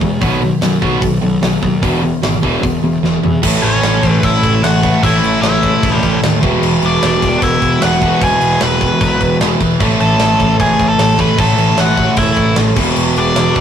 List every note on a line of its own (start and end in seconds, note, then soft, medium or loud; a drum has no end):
0.01 0.23 E2 medium
0.01 0.20 E2 medium
0.01 0.20 B2 medium
0.01 0.20 E3 medium
0.01 0.20 G#3 medium
0.01 kick medium
0.21 0.50 B1 medium
0.21 0.40 B2 medium
0.21 0.41 D#3 medium
0.21 0.41 F#3 medium
0.21 0.41 F#3 loud
0.21 0.41 B3 loud
0.21 kick loud
0.21 open hi-hat medium
0.41 0.60 B2 medium
0.41 0.60 D#3 medium
0.41 0.60 F#3 medium
0.61 0.77 F#2 medium
0.61 0.80 B2 medium
0.61 0.81 D#3 medium
0.61 0.80 F#3 medium
0.61 snare loud
0.61 open hi-hat medium
0.81 0.96 B1 medium
0.81 1.01 B2 medium
0.81 1.01 D#3 medium
0.81 1.00 F#3 loud
0.81 1.02 F#3 medium
0.81 1.01 B3 loud
0.81 kick medium
1.01 1.16 B1 medium
1.01 1.20 B2 medium
1.01 1.21 B2 medium
1.01 1.21 D#3 medium
1.01 1.20 F#3 medium
1.01 kick loud
1.01 open hi-hat medium
1.22 1.36 B1 medium
1.22 1.40 B2 medium
1.22 1.41 B2 medium
1.22 1.41 D#3 medium
1.22 1.40 F#3 medium
1.41 1.56 B1 medium
1.41 1.60 B2 medium
1.41 1.61 B2 medium
1.41 1.61 D#3 medium
1.41 1.60 F#3 medium
1.41 snare loud
1.41 open hi-hat medium
1.62 1.77 D#2 medium
1.62 1.80 B2 medium
1.62 1.81 B2 medium
1.62 1.81 D#3 medium
1.62 1.80 F#3 medium
1.62 kick medium
1.82 2.11 E1 medium
1.82 2.01 E2 medium
1.82 2.01 B2 medium
1.82 2.01 E3 medium
1.82 2.02 E3 loud
1.82 2.02 B3 medium
1.82 2.02 D4 medium
1.82 kick loud
1.82 open hi-hat medium
2.02 2.21 E2 medium
2.02 2.21 B2 medium
2.02 2.21 E3 medium
2.02 2.21 B3 medium
2.22 2.37 G#1 medium
2.22 2.41 E2 medium
2.22 2.41 B2 medium
2.22 2.41 E3 medium
2.22 2.41 B3 medium
2.22 snare loud
2.22 open hi-hat medium
2.42 2.57 E1 medium
2.42 2.61 E2 medium
2.42 2.61 B2 medium
2.42 2.62 E3 medium
2.42 2.62 E3 loud
2.42 2.62 B3 medium
2.42 2.63 D4 loud
2.42 kick medium
2.62 2.78 E1 medium
2.62 2.81 E2 medium
2.62 2.81 B2 medium
2.62 2.81 E3 medium
2.62 2.82 B3 medium
2.62 kick loud
2.62 open hi-hat medium
2.82 2.97 E1 medium
2.82 3.01 E2 medium
2.82 3.01 B2 medium
2.82 3.02 E3 medium
2.82 3.02 B3 medium
3.03 3.17 E1 medium
3.03 3.21 E2 medium
3.03 3.21 B2 medium
3.03 3.22 E3 medium
3.03 3.22 B3 medium
3.03 snare medium
3.23 3.41 E2 medium
3.23 3.38 E2 medium
3.23 3.41 B2 medium
3.23 3.42 E3 medium
3.23 3.42 B3 medium
3.23 floor tom medium
3.42 3.58 A1 medium
3.42 5.01 A2 medium
3.42 4.81 A2 medium
3.42 5.03 E3 loud
3.42 4.83 E3 medium
3.42 5.02 A3 medium
3.42 4.81 A3 medium
3.42 5.03 C#4 loud
3.42 5.05 E4 medium
3.42 kick loud
3.42 crash loud
3.63 3.78 A1 medium
3.63 4.20 C#4 medium
3.63 4.11 C#5 loud
3.63 crash medium
3.83 3.98 A1 medium
3.83 snare loud
3.83 crash medium
4.03 4.17 A1 medium
4.03 kick medium
4.03 crash medium
4.11 4.25 B4 loud
4.23 4.38 A1 loud
4.23 4.62 E4 medium
4.23 4.61 E5 medium
4.23 kick loud
4.23 crash medium
4.43 4.58 A1 medium
4.43 kick medium
4.43 crash medium
4.64 4.92 A1 medium
4.64 5.01 F#4 medium
4.64 5.03 F#5 loud
4.64 snare loud
4.64 crash medium
4.82 5.01 A2 medium
4.82 5.03 E3 medium
4.82 5.02 A3 medium
4.82 kick medium
4.82 crash medium
5.02 5.18 A1 loud
5.02 6.41 A2 medium
5.02 6.41 E3 medium
5.02 6.43 E3 medium
5.02 6.42 A3 loud
5.02 6.42 A3 medium
5.02 6.42 C#4 loud
5.02 6.44 E4 loud
5.02 5.42 E4 medium
5.02 5.41 E5 loud
5.02 kick loud
5.02 crash medium
5.23 5.38 A1 medium
5.23 crash medium
5.42 5.72 A1 medium
5.42 6.19 E4 medium
5.42 5.97 E5 medium
5.42 snare loud
5.42 crash medium
5.63 kick medium
5.63 crash medium
5.83 5.97 E1 medium
5.83 kick loud
5.83 crash medium
5.97 6.18 D5 medium
6.03 6.17 A1 medium
6.03 kick medium
6.03 crash medium
6.23 6.38 D#2 medium
6.23 snare loud
6.23 crash medium
6.41 6.57 E1 medium
6.41 7.79 E2 medium
6.41 7.80 B2 loud
6.41 8.00 E3 medium
6.41 7.82 E3 medium
6.41 8.00 G#3 medium
6.41 8.01 B3 loud
6.41 8.04 E4 loud
6.41 kick loud
6.41 crash medium
6.63 6.77 E1 loud
6.63 crash medium
6.82 6.97 E1 medium
6.82 7.40 D4 medium
6.82 7.40 D5 medium
6.82 crash medium
7.02 7.17 E1 medium
7.02 snare loud
7.02 crash medium
7.22 7.37 E1 medium
7.22 kick medium
7.22 crash medium
7.42 7.56 E1 loud
7.42 7.79 E4 medium
7.42 7.83 E5 medium
7.42 kick loud
7.42 crash medium
7.62 7.76 E1 medium
7.62 kick medium
7.62 crash medium
7.80 8.11 E1 loud
7.80 7.99 E2 medium
7.80 8.00 B2 medium
7.80 8.03 E3 medium
7.80 8.20 F#4 medium
7.80 8.23 F#5 loud
7.80 snare loud
7.80 crash medium
8.00 9.38 E2 medium
8.00 9.39 B2 medium
8.00 9.80 E3 medium
8.00 9.42 E3 loud
8.00 9.59 G#3 loud
8.00 9.60 B3 loud
8.00 9.82 E4 loud
8.00 kick medium
8.00 crash medium
8.21 8.36 E1 medium
8.21 8.59 G#4 medium
8.21 8.59 G#5 medium
8.21 kick loud
8.21 crash medium
8.41 8.56 E1 medium
8.41 crash medium
8.61 8.90 E1 loud
8.61 9.37 B4 medium
8.61 9.37 B5 medium
8.61 snare loud
8.61 crash medium
8.81 kick medium
8.81 crash medium
9.01 9.15 B1 loud
9.01 kick loud
9.01 crash medium
9.21 9.35 E1 medium
9.21 kick medium
9.21 crash medium
9.40 9.55 E1 medium
9.40 9.59 E2 medium
9.40 9.59 B2 medium
9.40 9.80 E3 medium
9.40 snare loud
9.40 crash medium
9.60 9.75 E1 loud
9.60 kick medium
9.60 crash medium
9.79 9.95 A1 medium
9.79 11.36 A2 medium
9.79 11.17 A2 medium
9.79 11.37 E3 medium
9.79 11.19 E3 medium
9.79 11.38 A3 medium
9.79 11.17 A3 loud
9.79 11.38 C#4 loud
9.79 11.40 E4 loud
9.79 kick loud
9.79 crash medium
10.00 10.14 A1 medium
10.00 10.56 A4 medium
10.00 10.56 A5 medium
10.00 crash medium
10.19 10.34 A1 medium
10.19 snare loud
10.19 crash medium
10.40 10.54 A1 medium
10.40 kick medium
10.40 crash medium
10.60 10.74 A1 loud
10.60 10.88 G#4 medium
10.60 10.88 G#5 medium
10.60 kick loud
10.60 crash medium
10.79 10.94 A1 medium
10.79 kick medium
10.79 crash medium
10.89 11.17 A4 medium
10.89 11.19 A5 medium
10.98 11.27 A1 loud
10.98 snare loud
10.98 crash medium
11.18 11.37 A2 medium
11.18 11.39 E3 medium
11.18 11.37 A3 medium
11.18 11.38 B4 medium
11.18 11.40 B5 medium
11.18 kick loud
11.18 crash medium
11.37 11.53 A1 medium
11.37 12.75 A2 loud
11.37 12.76 A2 medium
11.37 12.75 E3 loud
11.37 12.78 E3 medium
11.37 12.76 A3 loud
11.37 12.77 C#4 loud
11.37 12.79 E4 loud
11.37 11.76 A4 medium
11.37 11.80 A5 medium
11.37 kick loud
11.37 crash medium
11.41 12.77 A3 loud
11.57 11.72 A1 medium
11.57 crash medium
11.77 12.06 A1 medium
11.77 12.16 F#4 medium
11.77 12.18 F#5 medium
11.77 snare loud
11.77 crash medium
11.97 kick medium
11.97 crash medium
12.16 12.32 E1 loud
12.16 12.55 E4 medium
12.16 12.55 E5 medium
12.16 kick loud
12.16 crash medium
12.36 12.52 A1 medium
12.36 kick medium
12.36 crash medium
12.56 12.71 A1 loud
12.56 snare loud
12.56 crash medium
12.76 12.91 E1 medium
12.76 13.61 E2 medium
12.76 13.61 B2 medium
12.76 13.61 E3 medium
12.76 13.61 E3 loud
12.76 13.61 G#3 medium
12.76 13.61 B3 medium
12.76 13.61 E4 loud
12.76 kick loud
12.76 crash loud
12.96 13.11 E1 loud
12.96 crash medium
13.16 13.31 E1 medium
13.16 13.61 D4 medium
13.16 13.61 D5 loud
13.16 crash medium
13.36 13.50 E1 loud
13.36 snare loud
13.36 crash medium
13.56 13.61 E1 medium
13.56 kick medium
13.56 crash medium